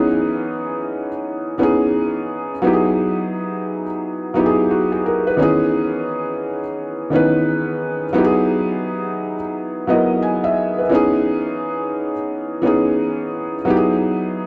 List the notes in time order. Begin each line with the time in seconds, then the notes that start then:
Already playing: E3 B3 C#4 D#4 G#4 B4
1.58 E3 B3 C#4 D#4
1.63 G#4
2.62 F#3 B3 D#4 E4
2.67 G4
2.73 G#4
4.34 F#3 B3 D#4 E4
4.39 G4
4.46 G#4
4.71 F#4
4.92 G#4
5.06 A#4
5.27 B4
5.37 D#3 B3 C#4
5.41 E3 D#4 G#4
7.10 D#3 B3 C#4 D#4
7.16 E3 B4
8.13 F#3 B3 D#4 E4
8.18 G4
8.24 G#4
9.87 F#3 B3 E4 D#5
9.92 A#4
10.22 G#5
10.44 E5
10.78 B4
10.89 E3 B3 C#4
10.93 D#4 G#4
12.62 E3 B3 C#4 D#4
12.67 G#4
13.65 F#3 B3 D#4
13.69 E4 G4
13.77 G#4